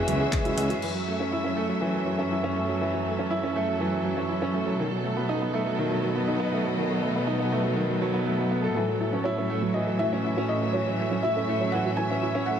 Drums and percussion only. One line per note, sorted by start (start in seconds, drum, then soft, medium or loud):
0.08 closed hi-hat medium
0.33 kick medium
0.33 clap medium
0.33 closed hi-hat soft
0.45 closed hi-hat soft
0.58 closed hi-hat medium
0.70 closed hi-hat soft
0.82 crash medium